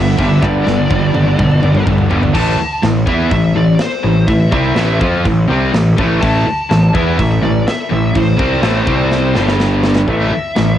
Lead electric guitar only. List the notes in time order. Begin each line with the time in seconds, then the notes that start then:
Already playing: E5
0.45 D5
2.35 A5
3.09 E5
3.32 E5
3.56 D5
3.81 C5
4.27 E5
4.52 E5
6.21 A5
6.94 E5
7.18 E5
7.44 D5
7.68 E5
8.17 C5
10.11 E5